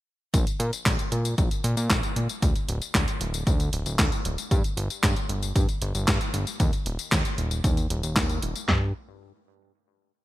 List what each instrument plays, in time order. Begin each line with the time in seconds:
0.34 analog synth bass A#1, kick, closed hi-hat, tambourine
0.47 closed hi-hat, tambourine
0.60 analog synth bass A#2, closed hi-hat
0.73 closed hi-hat, tambourine
0.86 analog synth bass A#1, kick, snare, clap, closed hi-hat, tambourine
0.99 closed hi-hat, tambourine
1.12 analog synth bass A#2, closed hi-hat
1.25 closed hi-hat, tambourine
1.38 analog synth bass A#1, kick, closed hi-hat, tambourine
1.51 closed hi-hat, tambourine
1.64 analog synth bass A#2, closed hi-hat
1.77 analog synth bass A#2, closed hi-hat, tambourine
1.90 analog synth bass A#1, kick, snare, clap, closed hi-hat, tambourine
2.03 closed hi-hat, tambourine
2.16 analog synth bass A#2, closed hi-hat
2.29 closed hi-hat, tambourine
2.42 analog synth bass D2, kick, closed hi-hat, tambourine
2.56 closed hi-hat, tambourine
2.68 analog synth bass D1, closed hi-hat
2.82 closed hi-hat, tambourine
2.95 analog synth bass D2, kick, snare, clap, closed hi-hat, tambourine
3.08 closed hi-hat, tambourine
3.20 analog synth bass D1, closed hi-hat
3.34 closed hi-hat, tambourine
3.47 analog synth bass D2, kick, closed hi-hat, tambourine
3.60 closed hi-hat, tambourine
3.73 analog synth bass D1, closed hi-hat
3.86 analog synth bass D1, closed hi-hat, tambourine
3.99 analog synth bass D2, kick, snare, clap, closed hi-hat, tambourine
4.12 closed hi-hat, tambourine
4.25 analog synth bass D1, closed hi-hat
4.38 closed hi-hat, tambourine
4.51 analog synth bass G2, kick, closed hi-hat, tambourine
4.64 closed hi-hat, tambourine
4.77 analog synth bass G1, closed hi-hat
4.90 closed hi-hat, tambourine
5.03 analog synth bass G2, kick, snare, clap, closed hi-hat, tambourine
5.16 closed hi-hat, tambourine
5.29 analog synth bass G1, closed hi-hat
5.43 closed hi-hat, tambourine
5.56 analog synth bass G2, kick, closed hi-hat, tambourine
5.69 closed hi-hat, tambourine
5.82 analog synth bass G1, closed hi-hat
5.94 analog synth bass G1, closed hi-hat, tambourine
6.08 analog synth bass G2, kick, snare, clap, closed hi-hat, tambourine
6.21 closed hi-hat, tambourine
6.34 analog synth bass G1, closed hi-hat
6.47 closed hi-hat, tambourine
6.60 analog synth bass D#2, kick, closed hi-hat, tambourine
6.73 closed hi-hat, tambourine
6.86 analog synth bass D#1, closed hi-hat
6.99 closed hi-hat, tambourine
7.12 analog synth bass D#2, kick, snare, clap, closed hi-hat, tambourine
7.25 closed hi-hat, tambourine
7.38 analog synth bass D#1, closed hi-hat
7.51 closed hi-hat, tambourine
7.64 analog synth bass D#2, kick, closed hi-hat, tambourine
7.77 closed hi-hat, tambourine
7.90 analog synth bass D#1, closed hi-hat
8.03 analog synth bass D#1, closed hi-hat, tambourine
8.16 analog synth bass D#2, kick, snare, clap, closed hi-hat, tambourine
8.29 closed hi-hat, tambourine
8.42 analog synth bass D#1, closed hi-hat
8.56 closed hi-hat, tambourine
8.68 analog synth bass G2, snare, clap, floor tom